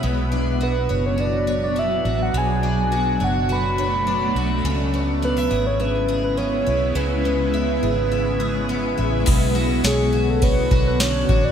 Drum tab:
CC |--------|--------|--------|--------|
RD |--------|--------|--------|--------|
TB |--------|--------|--------|--------|
SD |--------|--------|--------|--------|
BD |--------|--------|--------|--------|

CC |x-------|
RD |x-x-x-x-|
TB |--x---x-|
SD |--o---o-|
BD |o---oo-o|